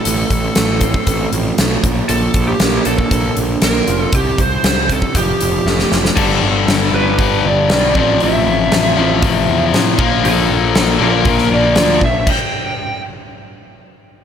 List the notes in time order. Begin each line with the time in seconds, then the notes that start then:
Already playing: A4
0.04 A1 A2, closed hi-hat
0.30 A1, kick, closed hi-hat
0.55 A1 A3, snare, closed hi-hat
0.81 C4, kick, closed hi-hat
0.94 kick
1.07 A1 A3, kick, closed hi-hat
1.32 A1 F3, closed hi-hat
1.58 B1 A3, snare, closed hi-hat
1.83 A#1 A#2, kick, closed hi-hat
2.09 A#1 A#2 A4, closed hi-hat
2.34 A#1, kick, closed hi-hat
2.48 G4
2.60 A#1 A#3, snare, closed hi-hat
2.85 A#1 D4 A4, closed hi-hat
2.98 kick
3.11 A#1 A#3, kick, closed hi-hat
3.36 A#1 D3, closed hi-hat
3.62 A#1 A#3 A#4, snare, closed hi-hat
3.87 F1 F4, closed hi-hat
4.01 A4
4.12 C2 C3 G4, kick, closed hi-hat
4.38 C2 C5, kick, closed hi-hat
4.63 C2 G3, snare, closed hi-hat
4.89 C4 A4, kick, closed hi-hat
5.02 kick
5.15 F1 F3 G4, kick, closed hi-hat
5.40 F1 F3, closed hi-hat
5.66 F1 A3, snare
5.79 snare
5.91 F1 G4, snare
6.05 snare
6.16 G1 G2 D3 G3 B3 D4 A4, kick, crash
6.42 G1 G3 B3
6.68 G1 G3 B3, snare, open hi-hat
6.93 G1 G3 B3 D4 B4
7.18 G1 G2 D3 G3 B3, kick, open hi-hat
7.45 G1 G3 B3 D5
7.70 B1 G3 B3 D4, snare, open hi-hat
7.94 A1 F2 A2 C3 F3 C4 D5, kick
8.20 A1 A2 F3 C4 E5, open hi-hat
8.46 A1 A2 F3
8.72 A1 A2 F3, snare, open hi-hat
8.96 A1 F2 A2 C3 F3 C4
9.23 A1 A2 F3, kick, open hi-hat
9.49 E2 A2 F3
9.73 A2 F3 C4, snare, open hi-hat
9.97 A#1 A#2 D3 F3 A#3, kick
10.24 A#1 A#2 D3 F3 A4, open hi-hat
10.50 A#1 A#2 D3
10.75 A#1 A#2 D3, snare, open hi-hat
10.99 A#1 A#2 D3 F3 A#3 A#4
11.25 A#1 A#2 D3, kick, open hi-hat
11.38 snare
11.51 A#1 A#2 D3 D5
11.76 D2 A#2 D3 F3, snare, open hi-hat
12.01 A#1 A#2 D3 E5, kick
12.27 G5, kick, crash